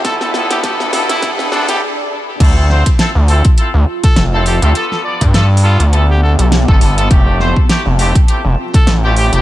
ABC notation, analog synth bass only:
X:1
M:4/4
L:1/16
Q:"Swing 16ths" 1/4=102
K:Ddor
V:1 name="Analog synth bass" clef=bass
z6 z E,,,3 E,,,2 z4 | D,,3 z2 D,,2 z2 D,, z2 F,,,3 D,, | z3 G,,4 D,,4 B,,,2 G,,, G,,,2 | F,,,3 z2 F,,,2 z2 F,,, z2 A,,,3 F,,, |]